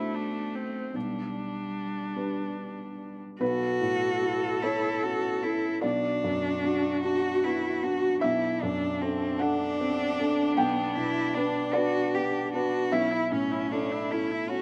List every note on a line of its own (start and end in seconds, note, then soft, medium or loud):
0.00 0.94 B1 soft
0.00 0.95 A3 medium
0.00 0.91 D4 soft
0.00 0.16 E4 soft
0.00 0.91 F#4 soft
0.00 0.91 C5 soft
0.15 0.56 D4 soft
0.55 0.97 C4 soft
0.94 2.13 B1 soft
0.94 3.20 G3 soft
0.94 3.21 D4 soft
2.16 3.37 D4 soft
2.16 3.37 G4 soft
2.16 3.37 B4 soft
3.40 5.79 B1 medium
3.40 4.64 F#4 medium
3.40 5.79 A4 medium
3.40 4.59 B4 medium
3.81 4.46 A2 medium
4.22 4.59 E4 soft
4.22 4.59 A4 medium
4.63 5.04 E4 medium
4.63 4.99 E4 soft
4.63 4.99 A4 medium
4.63 5.79 C#5 medium
5.02 5.67 C#4 soft
5.02 5.44 F#4 medium
5.43 5.83 E4 medium
5.43 5.79 E4 soft
5.43 5.79 A4 medium
5.81 8.18 B1 medium
5.81 7.01 D4 medium
5.81 8.18 F#4 medium
5.81 7.78 D5 medium
6.24 6.88 F#2 soft
6.64 7.00 D4 soft
6.64 7.00 F#4 medium
7.04 7.40 D4 soft
7.04 7.45 F#4 medium
7.04 7.40 F#4 medium
7.44 8.07 B3 soft
7.44 7.85 E4 medium
7.83 8.18 D4 soft
7.83 8.22 F#4 medium
7.83 8.19 F#4 medium
8.21 10.54 B1 medium
8.21 12.87 D4 medium
8.21 8.63 E4 medium
8.21 9.35 E5 medium
8.62 9.25 F#2 medium
8.62 9.03 D4 medium
9.01 9.43 C4 medium
9.01 9.36 D4 soft
9.01 9.37 A4 medium
9.39 9.76 D4 soft
9.39 10.57 D4 medium
9.39 9.76 A4 medium
9.39 10.52 F#5 medium
9.80 10.42 C4 medium
10.19 10.54 D4 medium
10.19 10.54 A4 medium
10.57 12.88 B1 medium
10.57 10.97 B3 medium
10.57 11.70 G5 medium
10.96 11.59 B2 medium
10.96 11.35 E4 medium
11.34 11.76 D4 medium
11.34 11.71 D4 medium
11.34 11.71 B4 medium
11.73 12.10 D4 medium
11.73 12.16 F#4 medium
11.73 12.10 B4 medium
11.73 12.87 D5 medium
12.14 12.76 B3 medium
12.14 12.53 G4 medium
12.53 12.88 D4 medium
12.53 12.95 F#4 medium
12.53 12.89 B4 medium
12.92 14.62 B1 medium
12.92 13.13 C#4 medium
12.92 13.32 E4 medium
12.92 14.62 E5 medium
13.11 13.33 E4 medium
13.31 13.94 A2 medium
13.31 13.53 C#4 medium
13.31 13.73 C#4 medium
13.51 13.71 E4 medium
13.71 13.93 C#4 medium
13.71 14.13 D4 medium
13.71 14.06 E4 medium
13.71 14.06 A4 medium
13.92 14.13 E4 soft
14.11 14.32 C#4 medium
14.11 14.45 E4 medium
14.11 14.51 E4 medium
14.11 14.45 A4 medium
14.31 14.49 E4 medium
14.49 14.62 C#4 soft
14.49 14.62 C#4 medium
14.49 14.62 F#4 medium